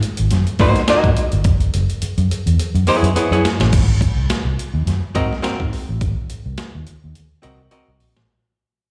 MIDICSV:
0, 0, Header, 1, 5, 480
1, 0, Start_track
1, 0, Tempo, 569801
1, 1222, Time_signature, 4, 2, 24, 8
1, 7504, End_track
2, 0, Start_track
2, 0, Title_t, "Hollow-body jazz guitar"
2, 0, Program_c, 0, 26
2, 501, Note_on_c, 0, 58, 79
2, 505, Note_on_c, 0, 63, 87
2, 506, Note_on_c, 0, 66, 82
2, 513, Note_on_c, 0, 72, 90
2, 679, Note_off_c, 0, 58, 0
2, 681, Note_off_c, 0, 63, 0
2, 681, Note_off_c, 0, 66, 0
2, 684, Note_off_c, 0, 72, 0
2, 744, Note_on_c, 0, 58, 105
2, 748, Note_on_c, 0, 63, 93
2, 753, Note_on_c, 0, 66, 107
2, 758, Note_on_c, 0, 75, 104
2, 920, Note_off_c, 0, 58, 0
2, 922, Note_off_c, 0, 63, 0
2, 924, Note_off_c, 0, 66, 0
2, 927, Note_off_c, 0, 75, 0
2, 2418, Note_on_c, 0, 59, 74
2, 2427, Note_on_c, 0, 68, 96
2, 2429, Note_on_c, 0, 64, 85
2, 2431, Note_on_c, 0, 73, 96
2, 2596, Note_off_c, 0, 59, 0
2, 2600, Note_off_c, 0, 68, 0
2, 2601, Note_off_c, 0, 64, 0
2, 2602, Note_off_c, 0, 73, 0
2, 2659, Note_on_c, 0, 59, 79
2, 2663, Note_on_c, 0, 64, 71
2, 2669, Note_on_c, 0, 68, 82
2, 2671, Note_on_c, 0, 73, 77
2, 2778, Note_off_c, 0, 59, 0
2, 2781, Note_off_c, 0, 64, 0
2, 2783, Note_off_c, 0, 68, 0
2, 2784, Note_off_c, 0, 73, 0
2, 2797, Note_on_c, 0, 73, 79
2, 2800, Note_on_c, 0, 68, 76
2, 2803, Note_on_c, 0, 64, 69
2, 2812, Note_on_c, 0, 59, 57
2, 2919, Note_off_c, 0, 73, 0
2, 2920, Note_off_c, 0, 68, 0
2, 2922, Note_off_c, 0, 64, 0
2, 2926, Note_off_c, 0, 59, 0
2, 4336, Note_on_c, 0, 60, 87
2, 4337, Note_on_c, 0, 66, 83
2, 4342, Note_on_c, 0, 70, 96
2, 4344, Note_on_c, 0, 75, 96
2, 4486, Note_off_c, 0, 60, 0
2, 4487, Note_off_c, 0, 66, 0
2, 4489, Note_off_c, 0, 70, 0
2, 4490, Note_off_c, 0, 75, 0
2, 4569, Note_on_c, 0, 60, 95
2, 4574, Note_on_c, 0, 66, 95
2, 4576, Note_on_c, 0, 70, 100
2, 4579, Note_on_c, 0, 77, 100
2, 4723, Note_off_c, 0, 60, 0
2, 4725, Note_off_c, 0, 66, 0
2, 4726, Note_off_c, 0, 70, 0
2, 4728, Note_off_c, 0, 77, 0
2, 6251, Note_on_c, 0, 60, 78
2, 6258, Note_on_c, 0, 66, 78
2, 6260, Note_on_c, 0, 70, 74
2, 6260, Note_on_c, 0, 75, 83
2, 6405, Note_off_c, 0, 60, 0
2, 6408, Note_off_c, 0, 66, 0
2, 6409, Note_off_c, 0, 70, 0
2, 6409, Note_off_c, 0, 75, 0
2, 6495, Note_on_c, 0, 60, 86
2, 6498, Note_on_c, 0, 66, 89
2, 6503, Note_on_c, 0, 70, 88
2, 6504, Note_on_c, 0, 75, 86
2, 6647, Note_off_c, 0, 60, 0
2, 6648, Note_off_c, 0, 66, 0
2, 6651, Note_off_c, 0, 70, 0
2, 6651, Note_off_c, 0, 75, 0
2, 7504, End_track
3, 0, Start_track
3, 0, Title_t, "Fingered electric bass"
3, 0, Program_c, 1, 33
3, 164, Note_on_c, 1, 32, 87
3, 246, Note_off_c, 1, 32, 0
3, 269, Note_on_c, 1, 42, 83
3, 373, Note_off_c, 1, 42, 0
3, 499, Note_on_c, 1, 44, 106
3, 607, Note_off_c, 1, 44, 0
3, 875, Note_on_c, 1, 44, 89
3, 959, Note_off_c, 1, 44, 0
3, 1119, Note_on_c, 1, 31, 96
3, 1221, Note_off_c, 1, 31, 0
3, 1221, Note_on_c, 1, 30, 111
3, 1412, Note_off_c, 1, 30, 0
3, 1471, Note_on_c, 1, 30, 93
3, 1574, Note_off_c, 1, 30, 0
3, 1834, Note_on_c, 1, 42, 114
3, 1919, Note_off_c, 1, 42, 0
3, 2075, Note_on_c, 1, 40, 83
3, 2159, Note_off_c, 1, 40, 0
3, 2313, Note_on_c, 1, 42, 101
3, 2398, Note_off_c, 1, 42, 0
3, 2550, Note_on_c, 1, 42, 109
3, 2636, Note_off_c, 1, 42, 0
3, 2789, Note_on_c, 1, 42, 88
3, 2875, Note_off_c, 1, 42, 0
3, 3031, Note_on_c, 1, 33, 89
3, 3117, Note_off_c, 1, 33, 0
3, 3141, Note_on_c, 1, 32, 108
3, 3438, Note_off_c, 1, 32, 0
3, 3509, Note_on_c, 1, 36, 88
3, 3595, Note_off_c, 1, 36, 0
3, 3749, Note_on_c, 1, 36, 80
3, 3835, Note_off_c, 1, 36, 0
3, 3990, Note_on_c, 1, 39, 90
3, 4076, Note_off_c, 1, 39, 0
3, 4097, Note_on_c, 1, 42, 98
3, 4205, Note_off_c, 1, 42, 0
3, 4344, Note_on_c, 1, 44, 90
3, 4449, Note_off_c, 1, 44, 0
3, 4714, Note_on_c, 1, 44, 96
3, 4798, Note_off_c, 1, 44, 0
3, 4961, Note_on_c, 1, 33, 101
3, 5043, Note_off_c, 1, 33, 0
3, 5068, Note_on_c, 1, 32, 116
3, 5172, Note_off_c, 1, 32, 0
3, 5440, Note_on_c, 1, 36, 84
3, 5523, Note_off_c, 1, 36, 0
3, 5687, Note_on_c, 1, 39, 94
3, 5767, Note_off_c, 1, 39, 0
3, 5930, Note_on_c, 1, 39, 82
3, 6008, Note_off_c, 1, 39, 0
3, 6270, Note_on_c, 1, 36, 85
3, 6457, Note_off_c, 1, 36, 0
3, 6640, Note_on_c, 1, 36, 82
3, 6742, Note_off_c, 1, 36, 0
3, 6742, Note_on_c, 1, 34, 91
3, 6869, Note_off_c, 1, 34, 0
3, 6869, Note_on_c, 1, 33, 80
3, 6956, Note_off_c, 1, 33, 0
3, 7504, End_track
4, 0, Start_track
4, 0, Title_t, "Muted fingered electric bass strokes"
4, 1707, Note_on_c, 9, 29, 52
4, 1791, Note_off_c, 9, 29, 0
4, 7504, End_track
5, 0, Start_track
5, 0, Title_t, "Drums"
5, 22, Note_on_c, 9, 42, 67
5, 106, Note_off_c, 9, 42, 0
5, 145, Note_on_c, 9, 42, 61
5, 229, Note_off_c, 9, 42, 0
5, 258, Note_on_c, 9, 42, 87
5, 264, Note_on_c, 9, 38, 42
5, 342, Note_off_c, 9, 42, 0
5, 349, Note_off_c, 9, 38, 0
5, 394, Note_on_c, 9, 42, 38
5, 479, Note_off_c, 9, 42, 0
5, 497, Note_on_c, 9, 46, 71
5, 503, Note_on_c, 9, 36, 96
5, 581, Note_off_c, 9, 46, 0
5, 587, Note_off_c, 9, 36, 0
5, 637, Note_on_c, 9, 42, 54
5, 640, Note_on_c, 9, 38, 43
5, 721, Note_off_c, 9, 42, 0
5, 724, Note_off_c, 9, 38, 0
5, 739, Note_on_c, 9, 42, 92
5, 740, Note_on_c, 9, 38, 107
5, 823, Note_off_c, 9, 42, 0
5, 824, Note_off_c, 9, 38, 0
5, 875, Note_on_c, 9, 36, 94
5, 876, Note_on_c, 9, 42, 36
5, 959, Note_off_c, 9, 36, 0
5, 961, Note_off_c, 9, 42, 0
5, 982, Note_on_c, 9, 42, 80
5, 1066, Note_off_c, 9, 42, 0
5, 1110, Note_on_c, 9, 42, 49
5, 1194, Note_off_c, 9, 42, 0
5, 1215, Note_on_c, 9, 42, 94
5, 1220, Note_on_c, 9, 36, 127
5, 1300, Note_off_c, 9, 42, 0
5, 1304, Note_off_c, 9, 36, 0
5, 1352, Note_on_c, 9, 42, 42
5, 1436, Note_off_c, 9, 42, 0
5, 1463, Note_on_c, 9, 42, 82
5, 1547, Note_off_c, 9, 42, 0
5, 1597, Note_on_c, 9, 42, 45
5, 1682, Note_off_c, 9, 42, 0
5, 1700, Note_on_c, 9, 42, 97
5, 1784, Note_off_c, 9, 42, 0
5, 1835, Note_on_c, 9, 42, 39
5, 1919, Note_off_c, 9, 42, 0
5, 1949, Note_on_c, 9, 42, 76
5, 2033, Note_off_c, 9, 42, 0
5, 2080, Note_on_c, 9, 42, 58
5, 2164, Note_off_c, 9, 42, 0
5, 2186, Note_on_c, 9, 42, 84
5, 2270, Note_off_c, 9, 42, 0
5, 2320, Note_on_c, 9, 42, 39
5, 2404, Note_off_c, 9, 42, 0
5, 2417, Note_on_c, 9, 46, 69
5, 2502, Note_off_c, 9, 46, 0
5, 2560, Note_on_c, 9, 42, 54
5, 2645, Note_off_c, 9, 42, 0
5, 2663, Note_on_c, 9, 42, 95
5, 2747, Note_off_c, 9, 42, 0
5, 2805, Note_on_c, 9, 42, 33
5, 2889, Note_off_c, 9, 42, 0
5, 2906, Note_on_c, 9, 38, 98
5, 2906, Note_on_c, 9, 42, 75
5, 2990, Note_off_c, 9, 38, 0
5, 2990, Note_off_c, 9, 42, 0
5, 3032, Note_on_c, 9, 42, 49
5, 3039, Note_on_c, 9, 38, 97
5, 3117, Note_off_c, 9, 42, 0
5, 3123, Note_off_c, 9, 38, 0
5, 3140, Note_on_c, 9, 42, 101
5, 3140, Note_on_c, 9, 49, 104
5, 3142, Note_on_c, 9, 36, 127
5, 3224, Note_off_c, 9, 42, 0
5, 3225, Note_off_c, 9, 49, 0
5, 3227, Note_off_c, 9, 36, 0
5, 3377, Note_on_c, 9, 36, 92
5, 3385, Note_on_c, 9, 42, 70
5, 3461, Note_off_c, 9, 36, 0
5, 3469, Note_off_c, 9, 42, 0
5, 3620, Note_on_c, 9, 42, 94
5, 3623, Note_on_c, 9, 38, 112
5, 3705, Note_off_c, 9, 42, 0
5, 3707, Note_off_c, 9, 38, 0
5, 3869, Note_on_c, 9, 42, 64
5, 3953, Note_off_c, 9, 42, 0
5, 4105, Note_on_c, 9, 42, 85
5, 4111, Note_on_c, 9, 38, 43
5, 4189, Note_off_c, 9, 42, 0
5, 4196, Note_off_c, 9, 38, 0
5, 4340, Note_on_c, 9, 42, 59
5, 4345, Note_on_c, 9, 36, 86
5, 4425, Note_off_c, 9, 42, 0
5, 4429, Note_off_c, 9, 36, 0
5, 4487, Note_on_c, 9, 38, 42
5, 4571, Note_off_c, 9, 38, 0
5, 4583, Note_on_c, 9, 42, 94
5, 4584, Note_on_c, 9, 38, 106
5, 4667, Note_off_c, 9, 42, 0
5, 4668, Note_off_c, 9, 38, 0
5, 4717, Note_on_c, 9, 36, 87
5, 4801, Note_off_c, 9, 36, 0
5, 4827, Note_on_c, 9, 46, 71
5, 4911, Note_off_c, 9, 46, 0
5, 5063, Note_on_c, 9, 42, 95
5, 5065, Note_on_c, 9, 36, 127
5, 5148, Note_off_c, 9, 42, 0
5, 5149, Note_off_c, 9, 36, 0
5, 5304, Note_on_c, 9, 42, 72
5, 5389, Note_off_c, 9, 42, 0
5, 5540, Note_on_c, 9, 42, 91
5, 5542, Note_on_c, 9, 38, 118
5, 5624, Note_off_c, 9, 42, 0
5, 5626, Note_off_c, 9, 38, 0
5, 5784, Note_on_c, 9, 42, 66
5, 5869, Note_off_c, 9, 42, 0
5, 6027, Note_on_c, 9, 42, 88
5, 6111, Note_off_c, 9, 42, 0
5, 6260, Note_on_c, 9, 42, 66
5, 6344, Note_off_c, 9, 42, 0
5, 6497, Note_on_c, 9, 42, 93
5, 6581, Note_off_c, 9, 42, 0
5, 6742, Note_on_c, 9, 46, 66
5, 6826, Note_off_c, 9, 46, 0
5, 6879, Note_on_c, 9, 38, 93
5, 6963, Note_off_c, 9, 38, 0
5, 7504, End_track
0, 0, End_of_file